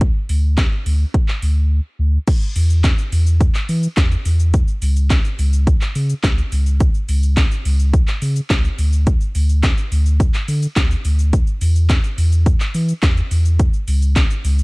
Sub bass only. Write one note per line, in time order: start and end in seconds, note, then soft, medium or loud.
0.00 0.10 D2 loud
0.29 0.67 D2 medium
0.86 1.05 D2 medium
1.43 1.80 D2 medium
1.99 2.18 D2 loud
2.56 2.93 E2 loud
3.12 3.50 E2 loud
3.69 3.88 E3 medium
3.97 4.16 E2 medium
4.26 4.63 E2 medium
4.82 5.20 C#2 loud
5.39 5.76 C#2 loud
5.96 6.14 C#3 medium
6.24 6.42 C#2 loud
6.52 6.90 C#2 medium
7.09 7.46 C#2 loud
7.65 8.03 C#2 loud
8.22 8.41 C#3 medium
8.50 8.69 C#2 loud
8.78 9.16 D2 medium
9.35 9.73 D2 loud
9.92 10.29 D2 loud
10.48 10.67 D3 medium
10.76 10.95 D2 loud
11.05 11.42 D2 medium
11.61 11.99 E2 loud
12.18 12.56 E2 loud
12.75 12.93 E3 medium
13.03 13.22 E2 medium
13.31 13.69 E2 medium
13.88 14.25 C#2 loud
14.44 14.63 C#2 loud